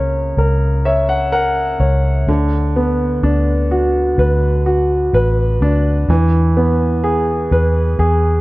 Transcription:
0, 0, Header, 1, 3, 480
1, 0, Start_track
1, 0, Tempo, 952381
1, 1147, Time_signature, 4, 2, 24, 8
1, 4238, End_track
2, 0, Start_track
2, 0, Title_t, "Grand piano"
2, 0, Program_c, 0, 0
2, 0, Control_c, 0, 64, 127
2, 0, Note_on_c, 0, 49, 55
2, 0, Note_on_c, 0, 58, 42
2, 0, Note_on_c, 0, 70, 49
2, 0, Note_on_c, 0, 73, 49
2, 184, Note_off_c, 0, 70, 0
2, 192, Note_on_c, 0, 70, 48
2, 410, Note_off_c, 0, 58, 0
2, 422, Note_off_c, 0, 73, 0
2, 429, Note_on_c, 0, 76, 54
2, 430, Note_on_c, 0, 73, 47
2, 540, Note_off_c, 0, 76, 0
2, 548, Note_on_c, 0, 78, 59
2, 659, Note_off_c, 0, 70, 0
2, 659, Note_off_c, 0, 78, 0
2, 667, Note_on_c, 0, 70, 50
2, 668, Note_on_c, 0, 78, 60
2, 900, Note_off_c, 0, 73, 0
2, 908, Note_on_c, 0, 73, 44
2, 1127, Note_off_c, 0, 78, 0
2, 1129, Note_off_c, 0, 49, 0
2, 1133, Note_off_c, 0, 70, 0
2, 1140, Note_off_c, 0, 73, 0
2, 1152, Note_on_c, 0, 50, 61
2, 1154, Control_c, 0, 64, 0
2, 1240, Control_c, 0, 64, 127
2, 1393, Note_on_c, 0, 59, 49
2, 1631, Note_on_c, 0, 62, 51
2, 1872, Note_on_c, 0, 66, 49
2, 2111, Note_on_c, 0, 71, 50
2, 2330, Note_off_c, 0, 59, 0
2, 2341, Note_off_c, 0, 66, 0
2, 2349, Note_on_c, 0, 66, 48
2, 2569, Note_off_c, 0, 62, 0
2, 2584, Note_off_c, 0, 71, 0
2, 2592, Note_on_c, 0, 71, 58
2, 2832, Note_on_c, 0, 62, 50
2, 3048, Note_off_c, 0, 66, 0
2, 3049, Note_off_c, 0, 50, 0
2, 3055, Note_off_c, 0, 71, 0
2, 3062, Note_off_c, 0, 62, 0
2, 3072, Note_on_c, 0, 52, 64
2, 3074, Control_c, 0, 64, 0
2, 3151, Control_c, 0, 64, 127
2, 3310, Note_on_c, 0, 59, 45
2, 3546, Note_on_c, 0, 68, 56
2, 3791, Note_on_c, 0, 71, 53
2, 4019, Note_off_c, 0, 68, 0
2, 4027, Note_on_c, 0, 68, 53
2, 4238, Note_off_c, 0, 52, 0
2, 4238, Note_off_c, 0, 59, 0
2, 4238, Note_off_c, 0, 68, 0
2, 4238, Note_off_c, 0, 71, 0
2, 4238, End_track
3, 0, Start_track
3, 0, Title_t, "Fingered electric bass"
3, 0, Program_c, 1, 33
3, 0, Note_on_c, 1, 37, 82
3, 165, Note_off_c, 1, 37, 0
3, 186, Note_on_c, 1, 37, 77
3, 886, Note_off_c, 1, 37, 0
3, 907, Note_on_c, 1, 37, 77
3, 1130, Note_off_c, 1, 37, 0
3, 1145, Note_on_c, 1, 38, 87
3, 1606, Note_off_c, 1, 38, 0
3, 1628, Note_on_c, 1, 38, 85
3, 2088, Note_off_c, 1, 38, 0
3, 2106, Note_on_c, 1, 38, 89
3, 2567, Note_off_c, 1, 38, 0
3, 2586, Note_on_c, 1, 33, 92
3, 2810, Note_off_c, 1, 33, 0
3, 2826, Note_on_c, 1, 38, 80
3, 3050, Note_off_c, 1, 38, 0
3, 3065, Note_on_c, 1, 40, 95
3, 3766, Note_off_c, 1, 40, 0
3, 3786, Note_on_c, 1, 40, 82
3, 4010, Note_off_c, 1, 40, 0
3, 4025, Note_on_c, 1, 40, 89
3, 4238, Note_off_c, 1, 40, 0
3, 4238, End_track
0, 0, End_of_file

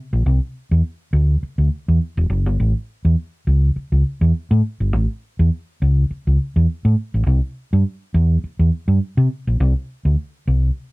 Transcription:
0, 0, Header, 1, 3, 480
1, 0, Start_track
1, 0, Tempo, 583658
1, 211, Time_signature, 4, 2, 24, 8
1, 8985, End_track
2, 0, Start_track
2, 0, Title_t, "Fingered electric bass"
2, 0, Program_c, 0, 33
2, 105, Note_on_c, 0, 34, 95
2, 184, Note_off_c, 0, 34, 0
2, 214, Note_on_c, 0, 36, 106
2, 313, Note_off_c, 0, 36, 0
2, 587, Note_on_c, 0, 40, 89
2, 665, Note_off_c, 0, 40, 0
2, 928, Note_on_c, 0, 38, 93
2, 1107, Note_off_c, 0, 38, 0
2, 1300, Note_on_c, 0, 38, 75
2, 1381, Note_off_c, 0, 38, 0
2, 1549, Note_on_c, 0, 40, 81
2, 1627, Note_off_c, 0, 40, 0
2, 1787, Note_on_c, 0, 28, 103
2, 1865, Note_off_c, 0, 28, 0
2, 1889, Note_on_c, 0, 30, 101
2, 2025, Note_off_c, 0, 30, 0
2, 2025, Note_on_c, 0, 31, 93
2, 2105, Note_off_c, 0, 31, 0
2, 2136, Note_on_c, 0, 33, 106
2, 2235, Note_off_c, 0, 33, 0
2, 2506, Note_on_c, 0, 40, 80
2, 2585, Note_off_c, 0, 40, 0
2, 2854, Note_on_c, 0, 37, 91
2, 3032, Note_off_c, 0, 37, 0
2, 3224, Note_on_c, 0, 37, 84
2, 3304, Note_off_c, 0, 37, 0
2, 3463, Note_on_c, 0, 40, 94
2, 3544, Note_off_c, 0, 40, 0
2, 3707, Note_on_c, 0, 45, 112
2, 3786, Note_off_c, 0, 45, 0
2, 3950, Note_on_c, 0, 31, 90
2, 4056, Note_off_c, 0, 31, 0
2, 4056, Note_on_c, 0, 33, 112
2, 4156, Note_off_c, 0, 33, 0
2, 4435, Note_on_c, 0, 40, 94
2, 4511, Note_off_c, 0, 40, 0
2, 4785, Note_on_c, 0, 37, 90
2, 4959, Note_off_c, 0, 37, 0
2, 5157, Note_on_c, 0, 37, 87
2, 5233, Note_off_c, 0, 37, 0
2, 5394, Note_on_c, 0, 40, 93
2, 5471, Note_off_c, 0, 40, 0
2, 5632, Note_on_c, 0, 45, 102
2, 5710, Note_off_c, 0, 45, 0
2, 5872, Note_on_c, 0, 33, 85
2, 5950, Note_off_c, 0, 33, 0
2, 5976, Note_on_c, 0, 36, 108
2, 6075, Note_off_c, 0, 36, 0
2, 6355, Note_on_c, 0, 43, 90
2, 6431, Note_off_c, 0, 43, 0
2, 6697, Note_on_c, 0, 40, 102
2, 6874, Note_off_c, 0, 40, 0
2, 7067, Note_on_c, 0, 40, 86
2, 7146, Note_off_c, 0, 40, 0
2, 7301, Note_on_c, 0, 43, 93
2, 7382, Note_off_c, 0, 43, 0
2, 7544, Note_on_c, 0, 48, 104
2, 7624, Note_off_c, 0, 48, 0
2, 7791, Note_on_c, 0, 34, 90
2, 7868, Note_off_c, 0, 34, 0
2, 7898, Note_on_c, 0, 36, 116
2, 7996, Note_off_c, 0, 36, 0
2, 8266, Note_on_c, 0, 38, 86
2, 8345, Note_off_c, 0, 38, 0
2, 8615, Note_on_c, 0, 36, 91
2, 8791, Note_off_c, 0, 36, 0
2, 8985, End_track
3, 0, Start_track
3, 0, Title_t, "Muted fingered electric bass strokes"
3, 1174, Note_on_c, 9, 29, 46
3, 1256, Note_off_c, 9, 29, 0
3, 3093, Note_on_c, 9, 29, 46
3, 3175, Note_off_c, 9, 29, 0
3, 5022, Note_on_c, 9, 29, 49
3, 5104, Note_off_c, 9, 29, 0
3, 6939, Note_on_c, 9, 29, 44
3, 7021, Note_off_c, 9, 29, 0
3, 8985, End_track
0, 0, End_of_file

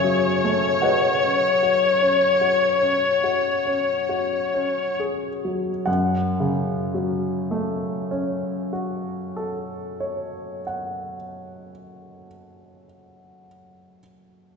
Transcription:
0, 0, Header, 1, 3, 480
1, 0, Start_track
1, 0, Tempo, 1574803
1, 735, Tempo, 1671309
1, 1215, Tempo, 1780415
1, 1695, Tempo, 1666667
1, 1696, Time_signature, 4, 2, 24, 8
1, 4201, End_track
2, 0, Start_track
2, 0, Title_t, "Violin"
2, 0, Program_c, 0, 40
2, 0, Note_on_c, 0, 73, 50
2, 1449, Note_off_c, 0, 73, 0
2, 4201, End_track
3, 0, Start_track
3, 0, Title_t, "Grand piano"
3, 0, Program_c, 1, 0
3, 0, Control_c, 1, 64, 127
3, 0, Note_on_c, 1, 42, 42
3, 0, Note_on_c, 1, 49, 35
3, 0, Note_on_c, 1, 68, 57
3, 0, Note_on_c, 1, 73, 56
3, 0, Note_on_c, 1, 76, 55
3, 0, Note_on_c, 1, 80, 73
3, 13, Note_on_c, 1, 54, 34
3, 87, Note_off_c, 1, 49, 0
3, 136, Note_on_c, 1, 57, 38
3, 206, Note_off_c, 1, 54, 0
3, 241, Note_off_c, 1, 68, 0
3, 242, Note_off_c, 1, 73, 0
3, 242, Note_off_c, 1, 76, 0
3, 249, Note_on_c, 1, 78, 50
3, 252, Note_off_c, 1, 80, 0
3, 254, Note_on_c, 1, 66, 37
3, 254, Note_on_c, 1, 68, 34
3, 254, Note_on_c, 1, 71, 36
3, 254, Note_on_c, 1, 75, 36
3, 327, Note_off_c, 1, 57, 0
3, 375, Note_on_c, 1, 61, 36
3, 446, Note_off_c, 1, 68, 0
3, 492, Note_off_c, 1, 66, 0
3, 496, Note_on_c, 1, 66, 36
3, 567, Note_off_c, 1, 61, 0
3, 616, Note_on_c, 1, 61, 37
3, 688, Note_off_c, 1, 66, 0
3, 735, Note_on_c, 1, 66, 41
3, 806, Note_off_c, 1, 61, 0
3, 850, Note_on_c, 1, 61, 39
3, 922, Note_off_c, 1, 66, 0
3, 972, Note_on_c, 1, 66, 40
3, 1042, Note_off_c, 1, 61, 0
3, 1093, Note_on_c, 1, 61, 39
3, 1167, Note_off_c, 1, 66, 0
3, 1217, Note_on_c, 1, 66, 39
3, 1288, Note_off_c, 1, 61, 0
3, 1339, Note_on_c, 1, 61, 39
3, 1411, Note_off_c, 1, 66, 0
3, 1449, Note_off_c, 1, 71, 0
3, 1449, Note_off_c, 1, 75, 0
3, 1458, Note_off_c, 1, 78, 0
3, 1461, Note_on_c, 1, 68, 36
3, 1535, Note_off_c, 1, 61, 0
3, 1583, Note_on_c, 1, 54, 38
3, 1652, Note_off_c, 1, 68, 0
3, 1685, Note_off_c, 1, 42, 0
3, 1693, Note_on_c, 1, 78, 51
3, 1697, Note_off_c, 1, 54, 0
3, 1697, Note_on_c, 1, 42, 47
3, 1703, Control_c, 1, 64, 0
3, 1771, Control_c, 1, 64, 127
3, 1850, Note_on_c, 1, 49, 47
3, 2006, Note_on_c, 1, 54, 42
3, 2169, Note_on_c, 1, 57, 41
3, 2342, Note_on_c, 1, 61, 44
3, 2520, Note_on_c, 1, 66, 39
3, 2703, Note_on_c, 1, 69, 40
3, 2888, Note_on_c, 1, 73, 35
3, 3061, Note_off_c, 1, 78, 0
3, 3066, Note_off_c, 1, 42, 0
3, 3079, Note_on_c, 1, 78, 35
3, 3218, Note_off_c, 1, 49, 0
3, 3374, Note_off_c, 1, 54, 0
3, 3538, Note_off_c, 1, 57, 0
3, 3711, Note_off_c, 1, 61, 0
3, 3888, Note_off_c, 1, 66, 0
3, 4037, Note_off_c, 1, 78, 0
3, 4038, Note_off_c, 1, 69, 0
3, 4038, Note_off_c, 1, 73, 0
3, 4201, End_track
0, 0, End_of_file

